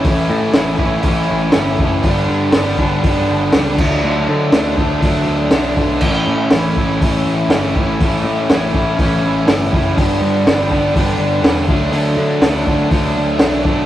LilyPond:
<<
  \new Staff \with { instrumentName = "Overdriven electric guitar" } { \time 4/4 \key a \mixolydian \tempo 4 = 121 <a, e a cis' e'>4 <e a cis' e'>8 <a cis' e'>8 <e a cis' e'>4 <a, e a cis' e'>8 <a cis' e'>8 | <g, d g b d'>4 <d g b d'>8 <g b d'>8 <d g b d'>4 <g, d g b d'>8 <d fis a d'>8 | <d fis a d'>4 <d fis a d'>8 <fis a d'>8 <d fis a d'>4 <d fis a d'>8 <fis a d'>8 | <a, e a cis' e'>4 <e a cis' e'>8 <a cis' e'>8 <e a cis' e'>4 <a, e a cis' e'>8 <a cis' e'>8 |
<a, e a cis' e'>4 <e a cis' e'>8 <a cis' e'>8 <e a cis' e'>4 <a, e a cis' e'>8 <a cis' e'>8 | <g, d g b d'>4 <d g b d'>8 <g b d'>8 <d g b d'>4 <g, d g b d'>8 <d fis a d'>8 | <d fis a d'>4 <d fis a d'>8 <fis a d'>8 <d fis a d'>4 <d fis a d'>8 <fis a d'>8 | }
  \new Staff \with { instrumentName = "Picked electric bass" } { \clef bass \time 4/4 \key a \mixolydian a,,8 a,8 a,,8 a,,8 a,,8 a,,8 g,,8 fis,,8 | g,,8 g,8 g,,8 g,,8 g,,8 g,,8 cis,8 d,8 | d,8 d8 d,8 d,8 d,8 d,8 b,,8 b,,8 | a,,8 a,8 a,,8 a,,8 a,,8 a,,8 g,,8 a,,8 |
a,,8 a,8 a,,8 a,,8 a,,8 a,,8 g,,8 fis,,8 | g,,8 g,8 g,,8 g,,8 g,,8 g,,8 e,,8 d,8 | d,8 d8 d,8 d,8 d,8 d,8 b,,8 b,,8 | }
  \new DrumStaff \with { instrumentName = "Drums" } \drummode { \time 4/4 <hho bd>4 <hho sn>8 bd8 <hho bd>4 <hho sn>8 bd8 | <hho bd>4 <hho sn>8 bd8 <hho bd>4 <hho sn>8 <cymc bd>8 | r4 <hho sn>8 bd8 <hho bd>4 <hho sn>8 bd8 | <cymc bd>4 <hho sn>8 bd8 <hho bd>4 <hho sn>8 bd8 |
<hho bd>4 <hho sn>8 bd8 <hho bd>4 <hho sn>8 bd8 | <hho bd>4 <hho sn>8 bd8 <hho bd>4 <hho sn>8 bd8 | hho4 <hho sn>8 bd8 <hho bd>4 <hho sn>8 bd8 | }
>>